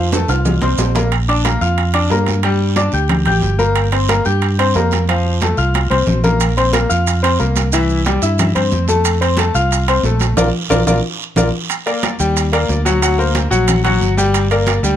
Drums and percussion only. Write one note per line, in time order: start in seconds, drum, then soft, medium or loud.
0.12 high conga medium
0.12 high timbale medium
0.12 short guiro medium
0.12 maracas medium
0.28 high conga soft
0.28 high timbale medium
0.28 short guiro medium
0.28 maracas soft
0.45 high conga soft
0.45 low conga medium
0.45 low timbale medium
0.45 long guiro medium
0.45 maracas medium
0.62 high conga loud
0.62 maracas soft
0.78 high conga medium
0.78 low timbale medium
0.78 short guiro medium
0.78 maracas medium
0.95 low conga medium
0.95 low timbale medium
0.95 short guiro medium
0.95 maracas soft
1.12 high conga soft
1.12 high timbale medium
1.12 long guiro medium
1.29 high conga soft
1.29 high timbale medium
1.45 high conga medium
1.45 high timbale medium
1.45 short guiro medium
1.61 high conga soft
1.61 short guiro medium
1.78 high conga soft
1.78 high timbale medium
1.78 long guiro medium
1.94 high conga soft
1.94 high timbale medium
2.10 high conga medium
2.10 low timbale medium
2.10 short guiro medium
2.26 high conga medium
2.26 high timbale medium
2.26 short guiro medium
2.43 high conga soft
2.43 high timbale medium
2.43 long guiro medium
2.60 high conga soft
2.76 high conga loud
2.76 high timbale medium
2.76 short guiro medium
2.92 high conga soft
2.92 short guiro medium
3.08 high conga soft
3.08 low conga medium
3.08 high timbale medium
3.08 long guiro medium
3.26 high conga soft
3.26 low conga medium
3.26 high timbale medium
3.42 high conga medium
3.42 short guiro medium
3.59 high conga medium
3.59 short guiro medium
3.75 high conga soft
3.75 high timbale medium
3.75 long guiro medium
3.92 high conga soft
3.92 high timbale medium
4.09 high conga medium
4.09 high timbale medium
4.09 short guiro medium
4.25 high conga soft
4.25 short guiro medium
4.42 high conga soft
4.42 high timbale medium
4.42 long guiro medium
4.59 high conga soft
4.59 high timbale medium
4.74 high conga medium
4.74 low timbale medium
4.74 short guiro medium
4.91 high conga medium
4.91 high timbale medium
4.91 short guiro medium
5.08 high conga soft
5.08 high timbale medium
5.08 long guiro medium
5.25 high conga soft
5.41 high conga loud
5.41 high timbale medium
5.41 short guiro medium
5.57 high conga soft
5.57 short guiro medium
5.74 high conga medium
5.74 high timbale medium
5.74 long guiro medium
5.91 high conga medium
5.91 high timbale medium
6.07 low conga medium
6.07 short guiro medium
6.24 low conga loud
6.24 short guiro medium
6.40 high conga soft
6.40 high timbale medium
6.40 long guiro medium
6.40 maracas medium
6.57 high conga soft
6.57 high timbale medium
6.57 maracas soft
6.73 high conga loud
6.73 high timbale medium
6.73 short guiro medium
6.73 maracas soft
6.90 high conga soft
6.90 short guiro medium
6.90 maracas medium
7.06 high conga soft
7.06 high timbale medium
7.06 long guiro medium
7.06 maracas medium
7.24 high conga soft
7.24 high timbale medium
7.24 maracas soft
7.39 high conga medium
7.39 short guiro medium
7.39 maracas soft
7.56 high conga medium
7.56 high timbale medium
7.56 short guiro medium
7.56 maracas medium
7.72 high conga soft
7.72 high timbale medium
7.72 long guiro medium
7.72 maracas medium
7.89 high conga soft
7.89 maracas soft
8.05 high conga loud
8.05 high timbale medium
8.05 short guiro medium
8.05 maracas soft
8.22 high conga soft
8.22 short guiro medium
8.22 maracas medium
8.38 high conga soft
8.38 low conga medium
8.38 high timbale medium
8.38 long guiro medium
8.38 maracas medium
8.55 high conga soft
8.55 high timbale medium
8.55 maracas soft
8.71 high conga medium
8.71 short guiro medium
8.71 maracas soft
8.88 high conga medium
8.88 short guiro medium
8.88 maracas medium
9.04 high conga soft
9.04 high timbale medium
9.04 long guiro medium
9.04 maracas medium
9.21 high conga soft
9.21 high timbale medium
9.21 maracas soft
9.37 high conga medium
9.37 high timbale medium
9.37 short guiro medium
9.37 maracas soft
9.54 high conga soft
9.54 short guiro medium
9.54 maracas medium
9.70 high conga soft
9.70 high timbale medium
9.70 long guiro medium
9.70 maracas medium
9.87 high conga soft
9.87 high timbale medium
9.87 maracas soft
10.04 high conga medium
10.04 short guiro medium
10.04 maracas soft
10.19 high conga medium
10.19 high timbale medium
10.19 short guiro medium
10.19 maracas medium
10.37 low conga loud
10.37 high timbale loud
10.37 long guiro medium
10.37 maracas medium
10.69 low conga loud
10.69 high timbale loud
10.69 long guiro loud
10.69 maracas medium
10.87 low conga loud
10.87 high timbale loud
10.87 long guiro loud
10.87 maracas loud
11.36 low conga loud
11.36 high timbale loud
11.36 long guiro loud
11.36 maracas medium
11.69 high conga soft
11.69 high timbale medium
11.69 long guiro medium
11.69 maracas medium
11.86 high conga soft
11.86 high timbale medium
11.86 maracas soft
12.03 high conga medium
12.03 high timbale medium
12.03 short guiro medium
12.03 maracas soft
12.19 high conga soft
12.19 short guiro medium
12.19 maracas medium
12.36 high conga soft
12.36 high timbale medium
12.36 long guiro medium
12.36 maracas medium
12.53 high conga soft
12.53 high timbale medium
12.53 maracas soft
12.69 high conga medium
12.69 short guiro medium
12.69 maracas soft
12.86 high conga medium
12.86 high timbale medium
12.86 short guiro medium
12.86 maracas medium
13.02 high timbale medium
13.02 long guiro medium
13.02 maracas medium
13.19 high conga soft
13.19 maracas soft
13.35 high conga medium
13.35 high timbale medium
13.35 short guiro medium
13.35 maracas soft
13.51 high conga soft
13.51 short guiro medium
13.51 maracas medium
13.68 high conga soft
13.68 low conga medium
13.68 high timbale medium
13.68 long guiro medium
13.68 maracas medium
13.85 high conga soft
13.85 low conga medium
13.85 high timbale medium
13.85 maracas soft
14.01 high conga medium
14.01 short guiro medium
14.01 maracas soft
14.18 high conga medium
14.18 short guiro medium
14.18 maracas medium
14.34 high conga soft
14.34 high timbale medium
14.34 long guiro medium
14.34 maracas medium
14.50 high conga soft
14.50 high timbale medium
14.50 maracas soft
14.67 high conga medium
14.67 high timbale medium
14.67 short guiro medium
14.67 maracas soft
14.84 high conga soft
14.84 short guiro medium
14.84 maracas medium